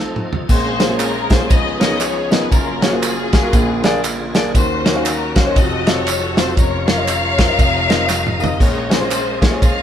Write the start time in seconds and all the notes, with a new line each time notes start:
Already playing: F3 A3 C4 D#4 A4
0.16 mid tom
0.33 floor tom
0.48 A#1 A#2 G#3 C4 C#4 F4 G#4 C5, kick, crash, tambourine
0.79 A#3 C#4 F4 G#4 C5, snare, ride bell, tambourine
0.89 A#3 C#4 F4 G#4 C5
1.00 A#4, clap, ride bell, tambourine
1.30 A#3 C#4 F4 G#4 C5, kick, snare, ride bell, tambourine
1.40 A#3 C#4 F4 G#4 C5
1.49 C#2 C#3 F3 B3 C#4 D#4 G#4 B4 D#5, kick, ride bell, tambourine
1.80 B3 D#4 F4 A#4 C#5 D#5, snare, ride bell, tambourine
2.01 C#5, clap, ride bell, tambourine
2.31 B3 D#4 F4 A#4 B4 D#5, snare, ride bell, tambourine
2.50 F#1 F#2 F#3 A#3 C#4 F4 G#4 A#4, kick, ride bell, tambourine
2.82 A#3 C#4 F4 F#4 G#4 C#5, snare, ride bell, tambourine
2.92 A#3 F4 F#4 G#4 C5
3.03 clap, ride bell, tambourine
3.33 A#3 F4 F#4 G#4 A#4, kick, snare, ride bell, tambourine
3.43 A#3 F4 F#4 G#4 A#4
3.53 A#1 A#2 D3 F4, kick, ride bell, tambourine
3.84 A#3 D4 F4 G#4 D5, snare, ride bell, tambourine
4.04 clap, ride bell, tambourine
4.35 A#3 D4 F4 G#4 D5, snare, ride bell, tambourine
4.54 D#2 D#3 C#4 F#4 A#4 C5, kick, ride bell, tambourine
4.85 C#4 D#4 F#4 A#4 D#5, snare, ride bell, tambourine
4.95 C#4 D#4 F#4 A#4 F5
5.04 A#4, clap, ride bell, tambourine
5.36 C#4 D#4 F#4 A#4 C5 F5, kick, snare, ride bell, tambourine
5.46 C#4 D#4 F#4 A#4 C#5
5.56 F1 F2 F3 D#4 F#4 A4 D#5, kick, ride bell, tambourine
5.87 C4 F4 F#4 A4 C#5 D#5, snare, ride bell, tambourine
6.07 clap, ride bell, tambourine
6.36 C4 F4 F#4 A4 C5, snare, ride bell, tambourine
6.57 F1 F2 C#4 F4 A#4 C#5, kick, ride bell, tambourine
6.87 F4 A#4 C#5 F5, snare, ride bell, tambourine
6.97 F4 A#4 D#5
7.08 clap, ride bell, tambourine
7.38 F4 A#4 C5, kick, snare, clap, ride bell, tambourine
7.47 F4 A#4 D#5
7.58 F1 F2 D#4 A#4 D#5, kick, ride bell, tambourine
7.89 C4 D#4 F4 A#4 D#5, snare, ride bell, tambourine
8.09 snare, clap, tambourine
8.27 mid tom
8.39 C4 D#4 F4 A#4 D#5 F5, tambourine
8.44 floor tom
8.59 A#1 A#2 G#3 C#4 F4 G#4 C#5, kick, crash, tambourine
8.90 A#3 C#4 F4 G#4 C5, snare, ride bell, tambourine
9.01 A#3 C#4 F4 G#4 C5
9.11 clap, ride bell, tambourine
9.41 A#3 C#4 F4 G#4 C#5, kick, snare, ride bell, tambourine
9.51 A#3 C#4 F4 G#4 C5
9.62 G#4 C#5 F5, kick, ride bell, tambourine